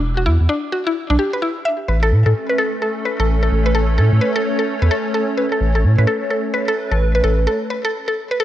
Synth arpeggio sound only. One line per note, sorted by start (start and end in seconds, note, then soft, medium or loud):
0.17 0.24 F#4 medium
0.26 0.36 E4 loud
0.49 0.60 D4 loud
0.72 0.83 F#4 medium
0.87 0.93 E4 loud
1.10 1.16 D4 loud
1.19 1.33 G4 medium
1.33 1.40 B4 medium
1.42 1.48 E4 medium
1.65 1.72 E5 loud
1.89 1.99 B4 medium
2.03 2.09 A4 loud
2.26 2.33 A4 medium
2.50 2.56 B4 medium
2.58 2.69 A4 loud
2.82 2.92 A4 medium
3.05 3.15 B4 medium
3.19 3.26 A4 loud
3.43 3.49 A4 medium
3.66 3.72 B4 medium
3.75 3.85 A4 loud
3.98 4.08 A4 medium
4.21 4.32 B4 medium
4.36 4.42 A4 loud
4.59 4.65 A4 medium
4.82 4.89 B4 medium
4.91 5.01 A4 loud
5.14 5.25 A4 medium
5.38 5.48 B4 medium
5.52 5.58 A4 loud
5.75 5.82 A4 medium
5.98 6.05 B4 medium
6.07 6.18 A4 loud
6.31 6.41 A4 medium
6.54 6.64 B4 medium
6.68 6.75 A4 loud
6.92 6.98 A4 medium
7.15 7.21 B4 medium
7.24 7.34 A4 medium
7.47 7.57 A4 medium
7.70 7.81 B4 medium
7.85 7.91 A4 loud
8.08 8.14 A4 medium
8.31 8.37 B4 medium
8.40 8.44 A4 loud